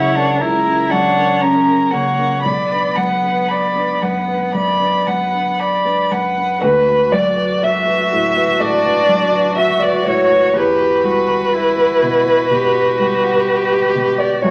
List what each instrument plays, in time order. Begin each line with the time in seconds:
Already playing: upright piano F#2 C#3 F#3 C#4 A#4, cello E4, viola C#5, violin F#5
0.17 upright piano C#4 A#4, cello D4
0.41 upright piano C#2, cello E4, viola A#4, violin A#5
0.67 upright piano C#4 A#4
0.90 upright piano F#3, cello D4, viola C#5, violin F#5
1.17 upright piano C#4 A#4
1.40 cello C#4, viola A#4, violin A#5
1.68 upright piano C#4 A#4
1.91 upright piano C#3, cello A#3, viola C#5, violin F#5
2.19 upright piano C#4 A#4
2.43 upright piano B1, cello B3, viola D5, violin B5
2.72 upright piano D4 B4
2.96 upright piano F#3, viola B4, violin F#5
3.23 upright piano D4 B4
3.49 viola D5, violin B5
3.75 upright piano D4 B4
4.02 upright piano F#2, viola B4, violin F#5
4.28 upright piano D4 B4
4.54 upright piano F#2, viola D5, violin B5
4.80 upright piano D4 B4
5.07 upright piano F#3, viola B4, violin F#5
5.33 upright piano D4 B4
5.59 viola D5, violin B5
5.85 upright piano D4 B4
6.11 upright piano F#2, viola B4, violin F#5
6.38 upright piano D4 B4
6.62 upright piano D2 B4, viola F#4, violin B4
6.89 upright piano F#4 B4
7.12 upright piano F#3 D5, violin D5
7.37 upright piano F#4 B4
7.63 violin E5, upright piano E5
7.86 upright piano F#4 B4
8.13 upright piano A2
8.37 upright piano F#4 B4
8.60 upright piano A2 D5, cello D4, violin D5
8.85 upright piano F#4 B4
9.09 upright piano F#3
9.32 upright piano F#4 B4
9.56 cello F#4, upright piano E5, violin E5
9.79 upright piano F#4 B4 D5, violin D5
10.04 upright piano A2 C#5, violin C#5
10.31 upright piano B4
10.54 upright piano E2 B4, viola F#4, cello G4, violin B4
10.80 upright piano F#4 B4
11.04 upright piano G3, cello F#4
11.28 upright piano F#4 B4
11.54 cello E4
11.77 upright piano F#4 B4
12.02 upright piano B2
12.26 upright piano F#4 B4
12.50 upright piano B2, cello G4
12.75 upright piano F#4 B4
12.99 upright piano G3, cello G4
13.24 upright piano B4 F#5
13.72 upright piano F#4 B4
13.95 upright piano B2
14.18 upright piano F#4 B4 D5, violin D5
14.42 upright piano F#2 C#5, cello F#4, viola F#4, violin C#5